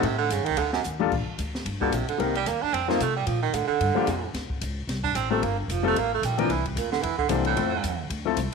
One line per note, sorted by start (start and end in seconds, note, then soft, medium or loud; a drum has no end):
0.03 0.30 A2 medium
0.03 0.18 C3 medium
0.03 kick soft
0.03 ride medium
0.18 0.33 D3 loud
0.30 0.39 G2 medium
0.30 0.47 C#3 medium
0.30 kick soft
0.30 hi-hat pedal medium
0.30 ride medium
0.39 0.48 D#2 medium
0.45 0.56 C2 medium
0.45 0.60 D#3 loud
0.45 ride soft
0.57 0.83 D2 medium
0.57 0.73 D3 medium
0.57 kick soft
0.57 ride medium
0.73 0.80 F#2 medium
0.73 snare soft
0.84 1.11 D#2 medium
0.84 hi-hat pedal medium
0.99 1.10 G3 medium
0.99 1.10 A#3 medium
0.99 1.11 D4 medium
0.99 1.11 F4 medium
0.99 1.11 A4 medium
0.99 mid tom medium
1.11 1.26 A#1 medium
1.11 kick medium
1.11 crash medium
1.28 muted upright bass stroke soft
1.38 1.65 D2 medium
1.38 kick soft
1.38 hi-hat pedal soft
1.38 ride medium
1.55 snare soft
1.65 1.91 G1 medium
1.65 kick soft
1.65 ride medium
1.81 1.96 B2 medium
1.81 1.91 G3 medium
1.81 1.92 A#3 medium
1.81 1.92 D4 medium
1.81 1.92 F4 medium
1.81 1.92 A4 medium
1.81 kick medium
1.92 2.07 A#1 medium
1.92 2.08 C3 medium
1.92 kick soft
1.92 hi-hat pedal medium
1.92 ride medium
2.08 2.22 D3 medium
2.08 muted upright bass stroke soft
2.08 ride soft
2.18 2.45 C2 medium
2.18 2.36 D#3 medium
2.18 2.33 G3 medium
2.18 2.33 A#3 medium
2.18 2.34 C4 medium
2.18 2.34 D#4 medium
2.18 2.34 A#4 medium
2.18 kick soft
2.18 ride medium
2.35 2.49 G3 medium
2.35 ride soft
2.46 2.61 D#2 medium
2.46 2.64 A#3 medium
2.46 kick soft
2.46 hi-hat pedal medium
2.46 ride medium
2.62 2.75 D4 loud
2.62 muted upright bass stroke soft
2.73 2.99 F2 medium
2.73 2.90 C4 medium
2.73 kick soft
2.73 ride medium
2.88 2.99 F3 medium
2.88 2.99 A3 medium
2.88 3.04 A#3 loud
2.88 2.99 C4 medium
2.88 3.00 D#4 medium
2.88 3.00 F4 medium
2.88 snare medium
3.00 3.26 C3 medium
3.00 3.16 A3 medium
3.00 kick soft
3.00 hi-hat pedal medium
3.00 ride medium
3.16 3.29 G3 medium
3.27 3.53 A#2 medium
3.27 3.42 F3 medium
3.27 kick soft
3.27 ride medium
3.43 3.56 D#3 medium
3.53 3.68 A2 medium
3.53 3.67 D3 medium
3.53 kick soft
3.53 hi-hat pedal medium
3.53 ride medium
3.67 4.30 D3 medium
3.67 muted upright bass stroke soft
3.80 3.95 G2 medium
3.80 kick soft
3.80 ride medium
3.95 4.06 F3 medium
3.95 4.06 G3 medium
3.95 4.06 A#3 medium
3.95 4.07 D4 medium
3.95 4.07 G4 medium
3.95 muted upright bass stroke soft
4.07 4.33 F2 medium
4.07 kick soft
4.07 hi-hat pedal medium
4.07 ride medium
4.33 4.49 D2 medium
4.33 kick soft
4.33 snare soft
4.33 ride medium
4.50 muted upright bass stroke soft
4.50 kick medium
4.61 4.87 C#2 medium
4.61 hi-hat pedal soft
4.61 ride medium
4.87 5.14 C2 medium
4.87 kick soft
4.87 snare soft
4.87 ride medium
5.04 5.17 D4 loud
5.04 kick medium
5.15 5.41 A1 medium
5.15 5.30 C4 medium
5.15 kick soft
5.15 hi-hat pedal medium
5.15 ride medium
5.30 5.41 G3 medium
5.30 5.44 A3 medium
5.30 5.41 A#3 medium
5.30 5.41 C4 medium
5.30 5.42 F4 medium
5.30 5.42 A4 medium
5.42 5.67 G1 medium
5.42 5.58 A#3 medium
5.42 kick soft
5.42 ride medium
5.59 5.72 D3 medium
5.68 5.94 F1 medium
5.68 5.86 F3 medium
5.68 kick soft
5.68 hi-hat pedal medium
5.68 ride medium
5.83 5.94 G3 medium
5.83 5.94 A#3 medium
5.83 5.95 C4 medium
5.83 5.95 F4 medium
5.83 5.95 A4 medium
5.87 6.00 A3 loud
5.95 6.21 A1 medium
5.95 6.13 A#3 loud
5.95 kick soft
5.95 ride medium
6.14 6.27 A3 medium
6.22 6.49 A#1 medium
6.22 6.40 G3 medium
6.22 kick soft
6.22 hi-hat pedal medium
6.22 ride medium
6.38 6.48 E3 medium
6.38 6.52 F3 loud
6.38 6.49 A#3 medium
6.38 6.49 C4 medium
6.38 6.49 D4 medium
6.38 6.49 A#4 medium
6.38 ride soft
6.49 6.76 C2 medium
6.49 6.66 E3 medium
6.49 kick soft
6.49 ride medium
6.65 6.79 G2 soft
6.65 kick medium
6.65 ride soft
6.76 7.02 D2 medium
6.76 6.91 A#2 medium
6.76 hi-hat pedal medium
6.76 ride medium
6.92 7.04 D3 medium
6.92 snare soft
7.03 7.29 E2 medium
7.03 7.18 E3 medium
7.03 kick soft
7.03 ride medium
7.18 7.31 D3 medium
7.18 kick medium
7.29 7.55 C2 medium
7.29 7.46 C3 medium
7.29 7.57 E3 medium
7.29 7.57 A#3 medium
7.29 7.56 C4 medium
7.29 7.57 D4 medium
7.29 7.56 A4 medium
7.29 hi-hat pedal medium
7.29 ride medium
7.45 8.07 A2 medium
7.45 ride soft
7.56 7.83 F2 medium
7.56 7.71 F3 medium
7.56 7.71 A3 medium
7.56 7.71 C4 medium
7.56 7.71 E4 medium
7.56 7.72 A4 medium
7.56 kick soft
7.56 ride medium
7.83 8.09 E2 medium
7.83 kick soft
7.83 hi-hat pedal medium
7.83 ride medium
8.10 8.36 D2 medium
8.10 kick soft
8.10 ride medium
8.25 8.36 F3 medium
8.25 8.36 A3 medium
8.25 8.37 C4 medium
8.25 8.37 E4 medium
8.25 8.37 A4 medium
8.37 8.52 C2 medium
8.37 kick soft
8.37 hi-hat pedal medium
8.37 ride medium